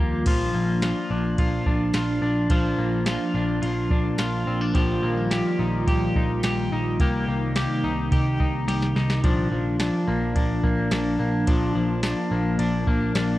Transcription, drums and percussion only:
0.26 kick loud
0.26 crash loud
0.26 ride medium
0.82 snare loud
0.82 ride medium
0.82 tambourine medium
1.38 kick medium
1.38 ride medium
1.66 kick medium
1.94 snare loud
1.94 ride medium
1.94 tambourine medium
2.50 kick loud
2.50 ride medium
3.06 snare loud
3.06 ride medium
3.06 tambourine medium
3.63 ride medium
3.90 kick medium
4.18 snare loud
4.18 ride medium
4.18 tambourine medium
4.75 kick loud
4.75 ride medium
5.31 snare loud
5.31 ride medium
5.31 tambourine medium
5.87 kick medium
5.87 ride medium
6.15 kick medium
6.43 snare loud
6.43 ride medium
6.43 tambourine medium
7.00 kick loud
7.00 ride medium
7.56 snare loud
7.56 ride medium
7.56 tambourine medium
8.12 kick loud
8.12 ride medium
8.40 kick medium
8.68 snare medium
8.68 ride medium
8.82 snare medium
8.96 snare medium
9.10 snare loud
9.24 kick loud
9.24 ride medium
9.80 snare loud
9.80 ride medium
9.80 tambourine medium
10.36 kick medium
10.36 ride medium
10.64 kick medium
10.91 snare loud
10.91 ride medium
10.91 tambourine medium
11.47 kick loud
11.47 ride medium
12.03 snare loud
12.03 ride medium
12.03 tambourine medium
12.59 ride medium
12.87 kick medium
13.15 snare loud
13.15 ride medium
13.15 tambourine medium

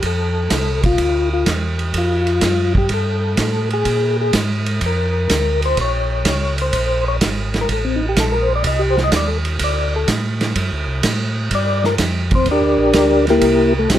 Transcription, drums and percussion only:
0.02 kick soft
0.02 ride medium
0.50 kick soft
0.50 snare medium
0.50 hi-hat pedal medium
0.50 ride medium
0.83 kick medium
0.83 ride soft
0.98 kick soft
0.98 ride medium
1.46 kick soft
1.46 snare medium
1.46 hi-hat pedal medium
1.46 ride medium
1.79 ride soft
1.94 kick soft
1.94 ride medium
2.27 ride soft
2.41 kick soft
2.41 snare medium
2.41 hi-hat pedal medium
2.41 ride medium
2.75 kick medium
2.89 kick soft
2.89 ride medium
3.37 kick soft
3.37 snare medium
3.37 hi-hat pedal medium
3.37 ride medium
3.70 ride soft
3.85 kick soft
3.85 ride medium
4.33 kick soft
4.33 snare medium
4.33 hi-hat pedal medium
4.33 ride medium
4.66 ride medium
4.81 kick soft
4.81 ride medium
5.29 kick soft
5.29 snare medium
5.29 hi-hat pedal medium
5.29 ride medium
5.62 ride soft
5.77 kick soft
5.77 ride medium
6.25 kick soft
6.25 snare medium
6.25 hi-hat pedal medium
6.25 ride medium
6.58 ride soft
6.73 kick soft
6.73 ride medium
7.21 kick soft
7.21 snare medium
7.21 hi-hat pedal soft
7.21 ride medium
7.54 snare medium
7.54 ride soft
7.69 kick soft
7.69 ride medium
8.16 kick soft
8.16 snare medium
8.16 hi-hat pedal medium
8.16 ride medium
8.64 kick soft
8.64 ride medium
8.98 snare soft
9.12 kick soft
9.12 snare medium
9.12 hi-hat pedal medium
9.12 ride medium
9.45 ride soft
9.59 kick soft
9.59 ride medium
10.08 kick soft
10.08 snare medium
10.08 hi-hat pedal medium
10.08 ride medium
10.41 snare medium
10.41 ride medium
10.56 kick soft
10.56 ride medium
11.03 kick soft
11.03 snare medium
11.03 hi-hat pedal medium
11.03 ride medium
11.51 kick soft
11.51 ride medium
11.84 snare soft
11.98 kick soft
11.98 snare medium
11.98 hi-hat pedal medium
11.98 ride medium
12.31 kick medium
12.31 ride medium
12.46 kick soft
12.46 ride medium
12.93 kick soft
12.93 snare medium
12.93 hi-hat pedal medium
12.93 ride medium
13.27 snare soft
13.27 ride soft
13.41 kick soft
13.41 ride medium
13.90 kick soft
13.90 snare medium
13.90 hi-hat pedal medium
13.90 ride medium

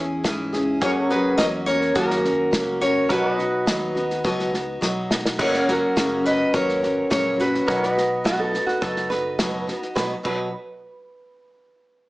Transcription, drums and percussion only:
0.24 kick medium
0.24 snare loud
0.24 hi-hat pedal medium
0.53 snare soft
0.82 kick loud
0.82 snare soft
1.10 snare soft
1.39 kick medium
1.39 snare loud
1.39 hi-hat pedal medium
1.67 snare soft
1.81 snare soft
1.95 kick loud
1.95 snare soft
2.10 snare soft
2.25 snare soft
2.53 kick medium
2.53 snare medium
2.53 hi-hat pedal medium
2.82 snare soft
3.10 kick loud
3.10 snare soft
3.39 snare soft
3.67 kick medium
3.67 snare loud
3.67 hi-hat pedal medium
3.96 snare soft
4.10 snare soft
4.25 kick loud
4.25 snare soft
4.39 snare soft
4.54 snare soft
4.82 kick medium
4.82 snare medium
4.82 hi-hat pedal medium
5.11 snare medium
5.25 snare medium
5.39 kick loud
5.39 snare soft
5.39 crash loud
5.54 snare soft
5.68 snare soft
5.97 kick medium
5.97 snare loud
5.97 hi-hat pedal medium
6.26 snare soft
6.54 kick loud
6.54 snare soft
6.69 snare soft
6.83 snare soft
7.11 kick medium
7.11 snare medium
7.11 hi-hat pedal medium
7.40 snare soft
7.54 snare soft
7.68 kick loud
7.68 snare soft
7.83 snare soft
7.98 snare soft
8.25 kick medium
8.25 snare loud
8.25 hi-hat pedal medium
8.54 snare soft
8.68 snare soft
8.82 kick loud
8.82 snare soft
8.96 snare soft
9.11 snare soft
9.39 kick medium
9.39 snare medium
9.39 hi-hat pedal medium
9.68 snare soft
9.82 snare soft
9.96 kick loud
9.96 snare medium
10.25 kick loud
10.25 crash medium

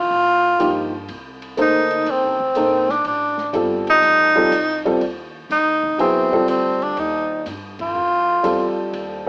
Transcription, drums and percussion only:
0.60 hi-hat pedal medium
0.60 ride medium
1.09 ride medium
1.42 ride soft
1.57 hi-hat pedal soft
1.57 ride medium
1.91 ride soft
2.06 ride medium
2.40 kick soft
2.55 hi-hat pedal medium
2.55 ride medium
2.89 snare soft
3.04 ride medium
3.38 snare soft
3.53 hi-hat pedal soft
3.53 ride medium
3.87 ride soft
4.02 ride medium
4.52 hi-hat pedal medium
4.52 ride medium
4.86 ride soft
5.01 ride medium
5.50 snare soft
5.50 hi-hat pedal medium
5.50 ride medium
5.83 kick medium
5.99 ride medium
6.32 kick soft
6.32 ride soft
6.48 hi-hat pedal medium
6.48 ride medium
6.82 ride soft
6.97 ride medium
7.46 snare soft
7.46 hi-hat pedal soft
7.46 ride medium
7.79 kick medium
7.79 ride medium
8.44 hi-hat pedal medium
8.44 ride medium
8.93 ride medium

